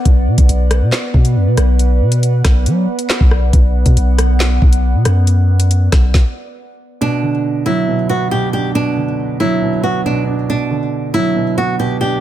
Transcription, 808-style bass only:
0.05 0.29 B1 loud
0.27 0.38 B2 loud
0.38 0.48 B1 loud
0.49 0.83 B1 loud
0.82 0.92 B2 loud
1.14 1.37 B2 loud
1.36 1.48 F#2 loud
1.47 1.57 B2 loud
1.58 2.03 B1 loud
2.01 2.42 B2 loud
2.45 2.68 B1 loud
2.66 2.87 F#3 loud
3.21 3.52 B1 loud
3.53 3.85 B1 loud
3.86 3.96 B2 loud
3.97 4.59 B1 loud
4.62 4.96 B1 loud
4.95 5.05 B2 loud
5.05 5.89 F#2 loud
5.92 6.13 B1 loud

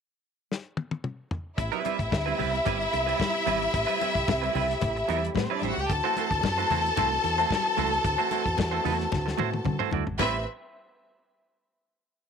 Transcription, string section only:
1.57 5.26 E4 medium
1.57 5.26 E5 loud
5.36 5.44 B3 medium
5.36 5.44 B4 medium
5.45 5.54 C4 medium
5.45 5.54 C5 medium
5.53 5.62 D4 medium
5.53 5.62 D5 medium
5.63 5.71 E4 medium
5.63 5.71 E5 medium
5.72 5.80 F#4 medium
5.72 5.80 F#5 medium
5.81 5.90 G4 medium
5.81 5.90 G5 medium
5.91 9.90 A4 medium
5.91 9.89 A5 loud
10.19 10.45 C4 medium
10.19 10.44 B4 medium
10.19 10.45 E5 loud

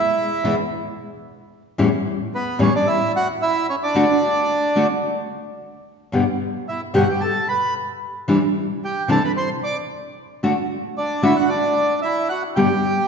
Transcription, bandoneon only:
0.00 0.55 E4 medium
0.00 0.55 E5 medium
2.35 2.59 B3 medium
2.35 2.59 B4 medium
2.62 2.73 C#4 medium
2.62 2.73 C#5 medium
2.75 2.87 D4 medium
2.75 2.88 D5 medium
2.87 3.12 E4 medium
2.87 3.12 E5 medium
3.16 3.28 F#4 medium
3.16 3.28 F#5 medium
3.42 3.67 E4 medium
3.42 3.67 E5 medium
3.70 3.75 C#4 medium
3.70 3.75 C#5 medium
3.83 4.87 D4 medium
3.83 4.87 D5 medium
6.69 6.82 E4 soft
6.69 6.81 E5 medium
6.94 7.08 F#4 soft
6.94 7.08 F#5 medium
7.08 7.22 G4 soft
7.08 7.21 G5 medium
7.21 7.48 A4 medium
7.21 7.46 A5 medium
7.48 7.74 B4 medium
7.48 7.74 B5 medium
8.84 9.08 G4 soft
8.84 9.09 G5 medium
9.11 9.22 A4 medium
9.11 9.23 A5 medium
9.25 9.30 B4 soft
9.25 9.32 B5 medium
9.37 9.49 C5 medium
9.37 9.50 C6 medium
9.64 9.76 D5 medium
9.64 9.77 D6 medium
10.98 11.22 D4 medium
10.98 11.25 D5 medium
11.24 11.36 E4 medium
11.24 11.37 E5 medium
11.37 11.50 F#4 medium
11.37 11.49 F#5 medium
11.49 12.00 D4 medium
11.49 12.00 D5 medium
12.02 12.29 E4 medium
12.02 12.28 E5 medium
12.29 12.43 F#4 medium
12.29 12.42 F#5 medium
12.56 13.08 G4 medium
12.56 13.08 G5 medium

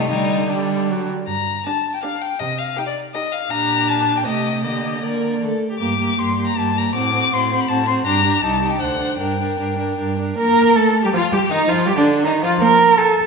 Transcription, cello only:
0.00 0.11 C3 medium
0.09 1.09 D3 medium
1.27 1.58 G2 medium
2.40 2.70 C3 medium
3.50 4.27 A#2 medium
4.25 4.65 C3 medium
4.63 5.40 D3 soft
5.41 5.49 D3 soft
5.80 6.14 G2 medium
6.19 6.52 G2 soft
6.56 6.90 G2 medium
6.94 7.27 A2 medium
7.32 7.64 A2 medium
7.68 8.01 A2 medium
8.06 8.39 G2 medium
8.43 8.76 C2 medium
8.80 9.15 D2 medium
9.19 9.54 G2 soft
9.59 9.94 G2 soft
9.99 10.34 G2 soft
10.38 10.77 A#4 medium
10.76 11.04 A4 medium
11.04 11.13 G4 medium
11.14 11.21 F4 medium
11.33 11.40 G4 medium
11.51 11.70 D#4 medium
11.68 11.89 F4 medium
11.87 11.97 G4 medium
11.97 12.05 D4 medium
12.25 12.43 D#4 medium
12.43 12.51 F4 medium
12.61 12.99 A#4 loud
12.98 13.26 A4 loud

